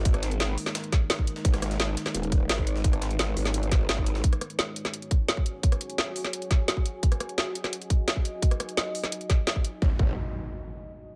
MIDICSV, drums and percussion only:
0, 0, Header, 1, 2, 480
1, 0, Start_track
1, 0, Key_signature, 5, "minor"
1, 0, Tempo, 348837
1, 73, Time_signature, 4, 2, 24, 8
1, 15352, End_track
2, 0, Start_track
2, 0, Title_t, "Drums"
2, 72, Note_on_c, 9, 36, 123
2, 72, Note_on_c, 9, 42, 88
2, 73, Note_off_c, 9, 42, 0
2, 73, Note_on_c, 9, 42, 92
2, 193, Note_off_c, 9, 42, 0
2, 193, Note_on_c, 9, 37, 50
2, 193, Note_on_c, 9, 42, 37
2, 210, Note_off_c, 9, 36, 0
2, 313, Note_off_c, 9, 42, 0
2, 313, Note_on_c, 9, 38, 58
2, 313, Note_on_c, 9, 42, 68
2, 331, Note_off_c, 9, 37, 0
2, 432, Note_off_c, 9, 42, 0
2, 432, Note_on_c, 9, 42, 37
2, 451, Note_off_c, 9, 38, 0
2, 552, Note_off_c, 9, 42, 0
2, 552, Note_on_c, 9, 38, 122
2, 552, Note_on_c, 9, 42, 89
2, 690, Note_off_c, 9, 38, 0
2, 690, Note_off_c, 9, 42, 0
2, 792, Note_on_c, 9, 42, 69
2, 792, Note_on_c, 9, 46, 77
2, 912, Note_off_c, 9, 42, 0
2, 912, Note_on_c, 9, 38, 38
2, 912, Note_on_c, 9, 42, 37
2, 913, Note_off_c, 9, 38, 0
2, 913, Note_on_c, 9, 38, 58
2, 930, Note_off_c, 9, 46, 0
2, 1032, Note_off_c, 9, 38, 0
2, 1032, Note_off_c, 9, 42, 0
2, 1032, Note_on_c, 9, 38, 103
2, 1032, Note_on_c, 9, 42, 81
2, 1152, Note_off_c, 9, 42, 0
2, 1152, Note_on_c, 9, 42, 37
2, 1170, Note_off_c, 9, 38, 0
2, 1272, Note_off_c, 9, 42, 0
2, 1272, Note_on_c, 9, 36, 112
2, 1272, Note_on_c, 9, 42, 70
2, 1273, Note_off_c, 9, 42, 0
2, 1273, Note_on_c, 9, 38, 39
2, 1273, Note_on_c, 9, 42, 69
2, 1410, Note_off_c, 9, 36, 0
2, 1410, Note_off_c, 9, 38, 0
2, 1410, Note_off_c, 9, 42, 0
2, 1512, Note_on_c, 9, 38, 127
2, 1512, Note_on_c, 9, 42, 93
2, 1513, Note_off_c, 9, 38, 0
2, 1513, Note_off_c, 9, 42, 0
2, 1513, Note_on_c, 9, 38, 114
2, 1513, Note_on_c, 9, 42, 88
2, 1632, Note_on_c, 9, 36, 63
2, 1651, Note_off_c, 9, 38, 0
2, 1651, Note_off_c, 9, 42, 0
2, 1752, Note_on_c, 9, 42, 69
2, 1753, Note_off_c, 9, 42, 0
2, 1753, Note_on_c, 9, 42, 67
2, 1770, Note_off_c, 9, 36, 0
2, 1873, Note_on_c, 9, 38, 47
2, 1890, Note_off_c, 9, 42, 0
2, 1992, Note_on_c, 9, 36, 127
2, 1993, Note_on_c, 9, 42, 88
2, 2010, Note_off_c, 9, 38, 0
2, 2113, Note_on_c, 9, 38, 46
2, 2114, Note_off_c, 9, 42, 0
2, 2114, Note_on_c, 9, 37, 49
2, 2114, Note_on_c, 9, 42, 35
2, 2130, Note_off_c, 9, 36, 0
2, 2233, Note_off_c, 9, 37, 0
2, 2233, Note_off_c, 9, 38, 0
2, 2233, Note_off_c, 9, 42, 0
2, 2233, Note_on_c, 9, 37, 56
2, 2233, Note_on_c, 9, 38, 38
2, 2233, Note_on_c, 9, 42, 67
2, 2353, Note_off_c, 9, 38, 0
2, 2353, Note_off_c, 9, 42, 0
2, 2353, Note_on_c, 9, 38, 41
2, 2353, Note_on_c, 9, 42, 35
2, 2370, Note_off_c, 9, 37, 0
2, 2473, Note_off_c, 9, 38, 0
2, 2473, Note_off_c, 9, 42, 0
2, 2473, Note_on_c, 9, 38, 125
2, 2473, Note_on_c, 9, 42, 89
2, 2610, Note_off_c, 9, 38, 0
2, 2610, Note_off_c, 9, 42, 0
2, 2712, Note_on_c, 9, 38, 49
2, 2712, Note_on_c, 9, 42, 68
2, 2713, Note_off_c, 9, 42, 0
2, 2713, Note_on_c, 9, 42, 67
2, 2831, Note_off_c, 9, 38, 0
2, 2831, Note_on_c, 9, 38, 59
2, 2834, Note_off_c, 9, 38, 0
2, 2834, Note_off_c, 9, 42, 0
2, 2834, Note_on_c, 9, 37, 34
2, 2834, Note_on_c, 9, 38, 38
2, 2834, Note_on_c, 9, 42, 35
2, 2952, Note_off_c, 9, 42, 0
2, 2952, Note_on_c, 9, 42, 88
2, 2953, Note_off_c, 9, 42, 0
2, 2953, Note_on_c, 9, 42, 93
2, 2971, Note_off_c, 9, 37, 0
2, 2971, Note_off_c, 9, 38, 0
2, 3073, Note_off_c, 9, 42, 0
2, 3073, Note_on_c, 9, 42, 35
2, 3192, Note_off_c, 9, 42, 0
2, 3192, Note_on_c, 9, 36, 112
2, 3192, Note_on_c, 9, 42, 68
2, 3193, Note_off_c, 9, 42, 0
2, 3193, Note_on_c, 9, 42, 67
2, 3330, Note_off_c, 9, 36, 0
2, 3331, Note_off_c, 9, 42, 0
2, 3432, Note_on_c, 9, 38, 120
2, 3432, Note_on_c, 9, 46, 81
2, 3433, Note_off_c, 9, 38, 0
2, 3433, Note_on_c, 9, 38, 127
2, 3433, Note_on_c, 9, 42, 90
2, 3552, Note_on_c, 9, 36, 65
2, 3570, Note_off_c, 9, 46, 0
2, 3571, Note_off_c, 9, 38, 0
2, 3571, Note_off_c, 9, 42, 0
2, 3673, Note_on_c, 9, 42, 69
2, 3674, Note_off_c, 9, 42, 0
2, 3674, Note_on_c, 9, 42, 65
2, 3690, Note_off_c, 9, 36, 0
2, 3793, Note_on_c, 9, 38, 39
2, 3811, Note_off_c, 9, 42, 0
2, 3912, Note_on_c, 9, 36, 123
2, 3913, Note_on_c, 9, 42, 89
2, 3914, Note_off_c, 9, 42, 0
2, 3914, Note_on_c, 9, 42, 87
2, 3931, Note_off_c, 9, 38, 0
2, 4034, Note_off_c, 9, 42, 0
2, 4034, Note_on_c, 9, 37, 46
2, 4034, Note_on_c, 9, 42, 35
2, 4050, Note_off_c, 9, 36, 0
2, 4152, Note_off_c, 9, 42, 0
2, 4152, Note_on_c, 9, 38, 57
2, 4152, Note_on_c, 9, 42, 68
2, 4154, Note_off_c, 9, 42, 0
2, 4154, Note_on_c, 9, 42, 62
2, 4171, Note_off_c, 9, 37, 0
2, 4274, Note_off_c, 9, 42, 0
2, 4274, Note_on_c, 9, 42, 34
2, 4290, Note_off_c, 9, 38, 0
2, 4393, Note_off_c, 9, 42, 0
2, 4393, Note_on_c, 9, 38, 115
2, 4393, Note_on_c, 9, 42, 85
2, 4394, Note_off_c, 9, 38, 0
2, 4394, Note_off_c, 9, 42, 0
2, 4394, Note_on_c, 9, 38, 124
2, 4394, Note_on_c, 9, 42, 88
2, 4531, Note_off_c, 9, 38, 0
2, 4531, Note_off_c, 9, 42, 0
2, 4633, Note_on_c, 9, 42, 67
2, 4634, Note_on_c, 9, 46, 78
2, 4752, Note_on_c, 9, 38, 57
2, 4754, Note_off_c, 9, 38, 0
2, 4754, Note_off_c, 9, 42, 0
2, 4754, Note_on_c, 9, 38, 39
2, 4754, Note_on_c, 9, 42, 35
2, 4771, Note_off_c, 9, 46, 0
2, 4873, Note_off_c, 9, 42, 0
2, 4873, Note_on_c, 9, 42, 88
2, 4892, Note_off_c, 9, 38, 0
2, 4994, Note_off_c, 9, 42, 0
2, 4994, Note_on_c, 9, 42, 34
2, 5112, Note_off_c, 9, 42, 0
2, 5112, Note_on_c, 9, 36, 112
2, 5112, Note_on_c, 9, 42, 68
2, 5114, Note_off_c, 9, 42, 0
2, 5114, Note_on_c, 9, 38, 39
2, 5114, Note_on_c, 9, 42, 65
2, 5249, Note_off_c, 9, 36, 0
2, 5251, Note_off_c, 9, 38, 0
2, 5251, Note_off_c, 9, 42, 0
2, 5352, Note_on_c, 9, 38, 115
2, 5352, Note_on_c, 9, 42, 89
2, 5353, Note_off_c, 9, 38, 0
2, 5353, Note_off_c, 9, 42, 0
2, 5353, Note_on_c, 9, 38, 126
2, 5353, Note_on_c, 9, 42, 90
2, 5472, Note_on_c, 9, 36, 65
2, 5490, Note_off_c, 9, 38, 0
2, 5490, Note_off_c, 9, 42, 0
2, 5592, Note_on_c, 9, 42, 70
2, 5593, Note_off_c, 9, 42, 0
2, 5593, Note_on_c, 9, 42, 64
2, 5609, Note_off_c, 9, 36, 0
2, 5712, Note_on_c, 9, 38, 46
2, 5731, Note_off_c, 9, 42, 0
2, 5832, Note_on_c, 9, 36, 120
2, 5833, Note_on_c, 9, 42, 90
2, 5850, Note_off_c, 9, 38, 0
2, 5953, Note_off_c, 9, 42, 0
2, 5953, Note_on_c, 9, 37, 45
2, 5953, Note_on_c, 9, 42, 35
2, 5969, Note_off_c, 9, 36, 0
2, 6073, Note_off_c, 9, 37, 0
2, 6073, Note_off_c, 9, 42, 0
2, 6073, Note_on_c, 9, 37, 51
2, 6073, Note_on_c, 9, 42, 63
2, 6193, Note_off_c, 9, 42, 0
2, 6193, Note_on_c, 9, 42, 35
2, 6210, Note_off_c, 9, 37, 0
2, 6312, Note_off_c, 9, 42, 0
2, 6312, Note_on_c, 9, 38, 120
2, 6312, Note_on_c, 9, 42, 90
2, 6450, Note_off_c, 9, 38, 0
2, 6450, Note_off_c, 9, 42, 0
2, 6553, Note_on_c, 9, 42, 64
2, 6673, Note_off_c, 9, 42, 0
2, 6673, Note_on_c, 9, 37, 32
2, 6673, Note_on_c, 9, 38, 37
2, 6673, Note_on_c, 9, 42, 36
2, 6791, Note_off_c, 9, 42, 0
2, 6791, Note_on_c, 9, 42, 89
2, 6810, Note_off_c, 9, 37, 0
2, 6810, Note_off_c, 9, 38, 0
2, 6912, Note_off_c, 9, 42, 0
2, 6912, Note_on_c, 9, 42, 35
2, 7032, Note_off_c, 9, 42, 0
2, 7032, Note_on_c, 9, 36, 104
2, 7032, Note_on_c, 9, 42, 64
2, 7170, Note_off_c, 9, 36, 0
2, 7170, Note_off_c, 9, 42, 0
2, 7272, Note_on_c, 9, 38, 122
2, 7272, Note_on_c, 9, 42, 92
2, 7392, Note_on_c, 9, 36, 64
2, 7410, Note_off_c, 9, 38, 0
2, 7410, Note_off_c, 9, 42, 0
2, 7512, Note_on_c, 9, 42, 64
2, 7529, Note_off_c, 9, 36, 0
2, 7650, Note_off_c, 9, 42, 0
2, 7752, Note_on_c, 9, 36, 114
2, 7753, Note_on_c, 9, 42, 94
2, 7873, Note_off_c, 9, 42, 0
2, 7873, Note_on_c, 9, 37, 45
2, 7873, Note_on_c, 9, 42, 36
2, 7890, Note_off_c, 9, 36, 0
2, 7993, Note_off_c, 9, 42, 0
2, 7993, Note_on_c, 9, 42, 65
2, 8010, Note_off_c, 9, 37, 0
2, 8113, Note_off_c, 9, 42, 0
2, 8113, Note_on_c, 9, 42, 37
2, 8233, Note_off_c, 9, 42, 0
2, 8233, Note_on_c, 9, 38, 114
2, 8233, Note_on_c, 9, 42, 91
2, 8371, Note_off_c, 9, 38, 0
2, 8371, Note_off_c, 9, 42, 0
2, 8473, Note_on_c, 9, 46, 80
2, 8594, Note_on_c, 9, 38, 37
2, 8594, Note_on_c, 9, 42, 36
2, 8611, Note_off_c, 9, 46, 0
2, 8714, Note_off_c, 9, 42, 0
2, 8714, Note_on_c, 9, 42, 94
2, 8731, Note_off_c, 9, 38, 0
2, 8834, Note_off_c, 9, 42, 0
2, 8834, Note_on_c, 9, 42, 36
2, 8952, Note_on_c, 9, 36, 107
2, 8954, Note_off_c, 9, 42, 0
2, 8954, Note_on_c, 9, 38, 37
2, 8954, Note_on_c, 9, 42, 66
2, 9090, Note_off_c, 9, 36, 0
2, 9092, Note_off_c, 9, 38, 0
2, 9092, Note_off_c, 9, 42, 0
2, 9193, Note_on_c, 9, 38, 114
2, 9193, Note_on_c, 9, 42, 94
2, 9312, Note_on_c, 9, 36, 61
2, 9331, Note_off_c, 9, 38, 0
2, 9331, Note_off_c, 9, 42, 0
2, 9434, Note_on_c, 9, 42, 64
2, 9450, Note_off_c, 9, 36, 0
2, 9571, Note_off_c, 9, 42, 0
2, 9672, Note_on_c, 9, 36, 113
2, 9674, Note_on_c, 9, 42, 96
2, 9793, Note_off_c, 9, 42, 0
2, 9793, Note_on_c, 9, 37, 46
2, 9793, Note_on_c, 9, 42, 37
2, 9810, Note_off_c, 9, 36, 0
2, 9913, Note_off_c, 9, 37, 0
2, 9913, Note_off_c, 9, 42, 0
2, 9913, Note_on_c, 9, 37, 55
2, 9913, Note_on_c, 9, 42, 70
2, 10034, Note_off_c, 9, 42, 0
2, 10034, Note_on_c, 9, 42, 37
2, 10051, Note_off_c, 9, 37, 0
2, 10154, Note_off_c, 9, 42, 0
2, 10154, Note_on_c, 9, 38, 113
2, 10154, Note_on_c, 9, 42, 92
2, 10292, Note_off_c, 9, 38, 0
2, 10292, Note_off_c, 9, 42, 0
2, 10394, Note_on_c, 9, 42, 68
2, 10515, Note_off_c, 9, 42, 0
2, 10515, Note_on_c, 9, 37, 33
2, 10515, Note_on_c, 9, 38, 36
2, 10515, Note_on_c, 9, 42, 38
2, 10634, Note_off_c, 9, 42, 0
2, 10634, Note_on_c, 9, 42, 97
2, 10653, Note_off_c, 9, 37, 0
2, 10653, Note_off_c, 9, 38, 0
2, 10754, Note_off_c, 9, 42, 0
2, 10754, Note_on_c, 9, 42, 38
2, 10872, Note_on_c, 9, 36, 101
2, 10874, Note_off_c, 9, 42, 0
2, 10874, Note_on_c, 9, 42, 69
2, 11010, Note_off_c, 9, 36, 0
2, 11012, Note_off_c, 9, 42, 0
2, 11114, Note_on_c, 9, 38, 119
2, 11114, Note_on_c, 9, 42, 98
2, 11232, Note_on_c, 9, 36, 60
2, 11252, Note_off_c, 9, 38, 0
2, 11252, Note_off_c, 9, 42, 0
2, 11354, Note_on_c, 9, 42, 69
2, 11370, Note_off_c, 9, 36, 0
2, 11492, Note_off_c, 9, 42, 0
2, 11592, Note_on_c, 9, 36, 113
2, 11594, Note_on_c, 9, 42, 96
2, 11714, Note_off_c, 9, 42, 0
2, 11714, Note_on_c, 9, 37, 47
2, 11714, Note_on_c, 9, 42, 39
2, 11729, Note_off_c, 9, 36, 0
2, 11834, Note_off_c, 9, 37, 0
2, 11834, Note_off_c, 9, 42, 0
2, 11834, Note_on_c, 9, 37, 55
2, 11834, Note_on_c, 9, 42, 68
2, 11954, Note_off_c, 9, 42, 0
2, 11954, Note_on_c, 9, 42, 38
2, 11971, Note_off_c, 9, 37, 0
2, 12073, Note_off_c, 9, 42, 0
2, 12073, Note_on_c, 9, 38, 116
2, 12073, Note_on_c, 9, 42, 96
2, 12210, Note_off_c, 9, 38, 0
2, 12210, Note_off_c, 9, 42, 0
2, 12313, Note_on_c, 9, 46, 79
2, 12433, Note_on_c, 9, 37, 33
2, 12433, Note_on_c, 9, 38, 35
2, 12433, Note_on_c, 9, 42, 38
2, 12451, Note_off_c, 9, 46, 0
2, 12552, Note_off_c, 9, 42, 0
2, 12552, Note_on_c, 9, 42, 98
2, 12570, Note_off_c, 9, 37, 0
2, 12570, Note_off_c, 9, 38, 0
2, 12672, Note_off_c, 9, 42, 0
2, 12672, Note_on_c, 9, 42, 37
2, 12792, Note_off_c, 9, 42, 0
2, 12792, Note_on_c, 9, 36, 105
2, 12792, Note_on_c, 9, 38, 37
2, 12792, Note_on_c, 9, 42, 72
2, 12929, Note_off_c, 9, 36, 0
2, 12929, Note_off_c, 9, 38, 0
2, 12929, Note_off_c, 9, 42, 0
2, 13032, Note_on_c, 9, 38, 118
2, 13032, Note_on_c, 9, 42, 99
2, 13152, Note_on_c, 9, 36, 60
2, 13169, Note_off_c, 9, 38, 0
2, 13169, Note_off_c, 9, 42, 0
2, 13272, Note_on_c, 9, 42, 70
2, 13289, Note_off_c, 9, 36, 0
2, 13409, Note_off_c, 9, 42, 0
2, 13512, Note_on_c, 9, 36, 113
2, 13649, Note_off_c, 9, 36, 0
2, 13752, Note_on_c, 9, 36, 114
2, 13889, Note_off_c, 9, 36, 0
2, 15352, End_track
0, 0, End_of_file